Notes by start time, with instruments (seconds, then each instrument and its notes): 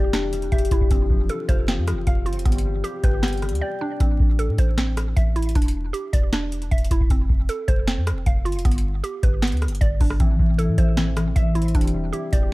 Already playing: 808-style bass E1, harp G3 C4 D4 E4 G4 E5, synth pluck D4 G4 D5
0.13 harp G3, synth pluck D4, snare, closed hi-hat
0.33 harp G3, closed hi-hat
0.42 closed hi-hat
0.52 808-style bass E1, harp G4, synth pluck E5, kick, closed hi-hat
0.58 closed hi-hat
0.65 closed hi-hat
0.71 808-style bass E1, harp D4, synth pluck E4, kick, closed hi-hat
0.81 kick
0.91 808-style bass F1, harp F3, synth pluck C4, kick, closed hi-hat
1.10 808-style bass F1, harp F3, kick
1.29 harp F4, synth pluck A4, closed hi-hat
1.49 808-style bass F1, synth pluck C5, harp F5, kick, closed hi-hat
1.68 harp F3, synth pluck C4, snare, closed hi-hat
1.78 808-style bass F2
1.87 harp F3, cross-stick, closed hi-hat
1.92 808-style bass F1
2.07 808-style bass F1, harp F5, synth pluck F5, kick, closed hi-hat
2.26 808-style bass G1, harp C4, synth pluck F4, closed hi-hat
2.33 808-style bass F1, closed hi-hat
2.39 closed hi-hat
2.45 808-style bass G1, harp G3, synth pluck B3, kick, closed hi-hat
2.52 closed hi-hat
2.58 closed hi-hat
2.65 harp G3
2.84 synth pluck G4, harp G4, closed hi-hat
3.03 808-style bass G1, synth pluck B4, harp G5, kick, closed hi-hat
3.23 harp G3, synth pluck B3, snare, closed hi-hat
3.28 closed hi-hat
3.33 closed hi-hat
3.37 closed hi-hat
3.42 harp G3, cross-stick, closed hi-hat
3.49 808-style bass D2, closed hi-hat
3.55 closed hi-hat
3.61 synth pluck D5, harp G5
3.81 harp D4, synth pluck D4
4.00 808-style bass A1, synth pluck C4, kick, closed hi-hat
4.20 808-style bass A1, kick
4.39 synth pluck A4, closed hi-hat
4.49 808-style bass A2
4.58 808-style bass A1, synth pluck C5, kick, closed hi-hat
4.78 synth pluck C4, snare, closed hi-hat
4.97 cross-stick, closed hi-hat
5.16 808-style bass A1, synth pluck E5, kick, closed hi-hat
5.36 synth pluck E4, closed hi-hat
5.42 closed hi-hat
5.49 closed hi-hat
5.55 808-style bass E1, synth pluck D4, kick, closed hi-hat
5.62 closed hi-hat
5.68 closed hi-hat
5.93 synth pluck G4, closed hi-hat
6.13 808-style bass E1, synth pluck D5, kick, closed hi-hat
6.33 synth pluck D4, snare, closed hi-hat
6.52 closed hi-hat
6.62 closed hi-hat
6.71 808-style bass E1, synth pluck E5, kick, closed hi-hat
6.78 closed hi-hat
6.84 closed hi-hat
6.91 808-style bass E1, synth pluck E4, kick, closed hi-hat
7.01 kick
7.10 808-style bass F1, synth pluck C4, kick, closed hi-hat
7.30 808-style bass F1, kick
7.49 synth pluck A4, closed hi-hat
7.68 808-style bass F1, synth pluck C5, kick, closed hi-hat
7.87 synth pluck C4, snare, closed hi-hat
7.97 808-style bass F2
8.07 cross-stick, closed hi-hat
8.12 808-style bass F1
8.26 808-style bass F1, synth pluck F5, kick, closed hi-hat
8.45 808-style bass G1, synth pluck F4, closed hi-hat
8.52 808-style bass F1, closed hi-hat
8.59 closed hi-hat
8.65 808-style bass G1, synth pluck B3, kick, closed hi-hat
8.71 closed hi-hat
8.78 closed hi-hat
9.04 synth pluck G4, closed hi-hat
9.23 808-style bass G1, synth pluck B4, kick, closed hi-hat
9.42 synth pluck B3, snare, closed hi-hat
9.47 closed hi-hat
9.52 808-style bass D2, closed hi-hat
9.57 closed hi-hat
9.62 cross-stick, closed hi-hat
9.67 808-style bass G1, closed hi-hat
9.75 closed hi-hat
9.81 808-style bass G1, synth pluck D5, kick, closed hi-hat
10.00 808-style bass G1, synth pluck D4, kick, open hi-hat
10.10 cross-stick
10.20 808-style bass A1, harp E3, synth pluck C4, kick, closed hi-hat
10.39 808-style bass A1, harp E3, kick
10.58 harp E4, synth pluck A4, closed hi-hat
10.68 808-style bass A2
10.78 808-style bass A1, synth pluck C5, harp E5, kick, closed hi-hat
10.97 harp E3, synth pluck C4, snare, closed hi-hat
11.17 harp E3, cross-stick, closed hi-hat
11.36 808-style bass A1, synth pluck E5, harp E5, kick, closed hi-hat
11.55 harp C4, synth pluck E4, closed hi-hat
11.62 closed hi-hat
11.68 closed hi-hat
11.74 808-style bass E1, harp G3, synth pluck D4, kick, closed hi-hat
11.81 closed hi-hat
11.88 closed hi-hat
11.94 harp G3
12.13 harp E4, synth pluck G4, closed hi-hat
12.32 808-style bass E1, harp G4, synth pluck D5, kick, closed hi-hat